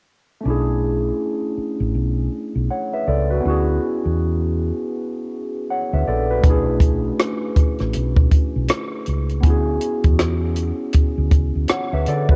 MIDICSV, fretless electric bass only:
0, 0, Header, 1, 3, 480
1, 0, Start_track
1, 0, Tempo, 750000
1, 280, Time_signature, 4, 2, 24, 8
1, 7908, End_track
2, 0, Start_track
2, 0, Title_t, "Fretless electric bass"
2, 0, Program_c, 0, 35
2, 289, Note_on_c, 0, 35, 76
2, 705, Note_off_c, 0, 35, 0
2, 1153, Note_on_c, 0, 33, 68
2, 1232, Note_off_c, 0, 33, 0
2, 1246, Note_on_c, 0, 35, 78
2, 1453, Note_off_c, 0, 35, 0
2, 1634, Note_on_c, 0, 35, 71
2, 1713, Note_off_c, 0, 35, 0
2, 1967, Note_on_c, 0, 37, 69
2, 2174, Note_off_c, 0, 37, 0
2, 2208, Note_on_c, 0, 38, 78
2, 2415, Note_off_c, 0, 38, 0
2, 2594, Note_on_c, 0, 40, 70
2, 3010, Note_off_c, 0, 40, 0
2, 3794, Note_on_c, 0, 38, 77
2, 3873, Note_off_c, 0, 38, 0
2, 3886, Note_on_c, 0, 34, 74
2, 4093, Note_off_c, 0, 34, 0
2, 4122, Note_on_c, 0, 35, 73
2, 4541, Note_off_c, 0, 35, 0
2, 4993, Note_on_c, 0, 33, 72
2, 5072, Note_off_c, 0, 33, 0
2, 5090, Note_on_c, 0, 35, 76
2, 5295, Note_off_c, 0, 35, 0
2, 5476, Note_on_c, 0, 35, 68
2, 5554, Note_off_c, 0, 35, 0
2, 5807, Note_on_c, 0, 37, 69
2, 6044, Note_off_c, 0, 37, 0
2, 6044, Note_on_c, 0, 38, 77
2, 6252, Note_off_c, 0, 38, 0
2, 6434, Note_on_c, 0, 40, 74
2, 6850, Note_off_c, 0, 40, 0
2, 7153, Note_on_c, 0, 38, 71
2, 7246, Note_off_c, 0, 38, 0
2, 7246, Note_on_c, 0, 37, 70
2, 7371, Note_off_c, 0, 37, 0
2, 7394, Note_on_c, 0, 38, 73
2, 7473, Note_off_c, 0, 38, 0
2, 7633, Note_on_c, 0, 38, 77
2, 7712, Note_off_c, 0, 38, 0
2, 7727, Note_on_c, 0, 50, 79
2, 7908, Note_off_c, 0, 50, 0
2, 7908, End_track
3, 0, Start_track
3, 0, Title_t, "Muted fretless electric bass strokes"
3, 1008, Note_on_c, 9, 29, 35
3, 1072, Note_off_c, 9, 29, 0
3, 4843, Note_on_c, 9, 29, 37
3, 4907, Note_off_c, 9, 29, 0
3, 7908, End_track
0, 0, End_of_file